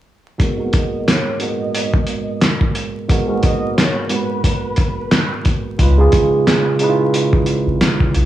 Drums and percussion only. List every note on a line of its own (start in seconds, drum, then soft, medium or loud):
0.40 kick medium
0.40 closed hi-hat medium
0.73 kick medium
0.73 closed hi-hat medium
1.08 snare loud
1.08 clap medium
1.08 closed hi-hat medium
1.40 closed hi-hat medium
1.74 closed hi-hat medium
1.94 kick loud
2.07 closed hi-hat medium
2.42 snare loud
2.42 clap medium
2.42 closed hi-hat medium
2.61 kick medium
2.75 closed hi-hat medium
3.09 kick loud
3.09 closed hi-hat medium
3.43 kick medium
3.43 closed hi-hat medium
3.78 snare loud
3.78 clap medium
3.78 closed hi-hat medium
4.09 closed hi-hat medium
4.44 kick medium
4.44 closed hi-hat loud
4.76 kick medium
4.76 closed hi-hat medium
5.11 snare loud
5.11 clap medium
5.11 closed hi-hat medium
5.45 kick medium
5.45 closed hi-hat medium
5.79 kick loud
5.79 closed hi-hat medium
6.12 kick medium
6.12 closed hi-hat medium
6.47 snare loud
6.47 clap medium
6.47 closed hi-hat medium
6.79 closed hi-hat medium
7.14 closed hi-hat loud
7.33 kick medium
7.46 closed hi-hat medium
7.81 snare loud
7.81 clap medium
7.81 closed hi-hat medium
8.00 kick medium
8.14 closed hi-hat medium